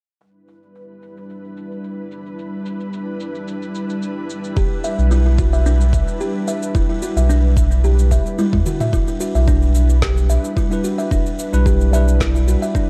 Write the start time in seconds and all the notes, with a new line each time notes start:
0.20 G3 D4 E4 B4, cabasa
0.48 cabasa
0.63 cabasa
0.75 cabasa
1.02 cabasa
1.17 cabasa
1.30 cabasa
1.44 cabasa
1.57 cabasa
1.72 cabasa
1.84 cabasa
2.11 cabasa
2.26 cabasa
2.39 cabasa
2.66 cabasa
2.80 cabasa
2.93 cabasa
3.20 cabasa
3.35 cabasa
3.48 cabasa
3.62 cabasa
3.75 cabasa
3.90 cabasa
4.02 cabasa
4.30 cabasa
4.44 cabasa
4.57 E1 G4, kick, cabasa
4.84 E5, cabasa
4.98 B1, cabasa
5.11 E4, cabasa
5.26 E4
5.38 F#4, kick, cabasa
5.53 E5, cabasa
5.66 D4, cabasa
5.81 cabasa
5.93 kick, cabasa
6.08 cabasa
6.21 G4, cabasa
6.48 E5, cabasa
6.63 cabasa
6.75 E1 E4, kick, cabasa
6.90 E4
7.02 F#4, cabasa
7.16 B1 E5, cabasa
7.29 D4, cabasa
7.57 kick, cabasa
7.72 cabasa
7.84 G4, cabasa
7.99 cabasa
8.11 E5, kick, cabasa
8.26 cabasa
8.39 E4, high tom, cabasa
8.53 E2 E4, kick, high tom
8.66 F#4, mid tom, cabasa
8.80 E5, mid tom, cabasa
8.93 E1 G3 D4 E4 B4, kick, cabasa
9.08 E4, cabasa
9.20 F#4, cabasa
9.35 B1 E5, cabasa
9.48 D4, kick, cabasa
9.62 cabasa
9.75 cabasa
9.90 cabasa
10.02 G4, kick, snare, cabasa
10.17 cabasa
10.30 E5, cabasa
10.44 cabasa
10.57 E4, kick, cabasa
10.69 G3 D4 E4 B4, cabasa
10.84 F#4, cabasa
10.98 E5, cabasa
11.11 E1 D4, kick, cabasa
11.26 cabasa
11.39 cabasa
11.52 B1 G3 D4 E4 B4, cabasa
11.66 G4, kick, cabasa
11.81 cabasa
11.91 G3 D4 E4 B4 E5, cabasa
12.08 cabasa
12.20 E4, kick, snare, cabasa
12.35 E4, cabasa
12.48 F#4, cabasa
12.62 E5, cabasa
12.75 D4, kick, cabasa